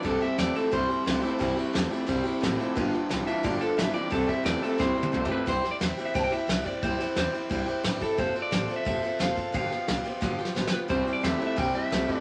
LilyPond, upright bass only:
\new Staff \with { instrumentName = "Upright bass" } { \clef bass \time 4/4 \key c \major \tempo 4 = 177 c,8 r8 e,8 r8 c,8 r8 c,8 r8 | c,8 r8 e,8 r8 c,8 r8 a,,8 r8 | g,,8 r8 b,,8 r8 g,,8 r8 g,,8 r8 | c,8 r8 e,8 r8 c,8 r8 c,8 r8 |
c,8 r8 e,8 r8 c,8 r8 c,8 r8 | c,8 r8 e,8 r8 c,8 r8 g,8 r8 | f,,8 r8 a,,8 r8 f,,8 r8 f,,8 r8 | g,,8 r8 b,,8 r8 g,,8 r8 g,,8 r8 |
c,8 r8 e,8 r8 c,8 r8 c,8 r8 | }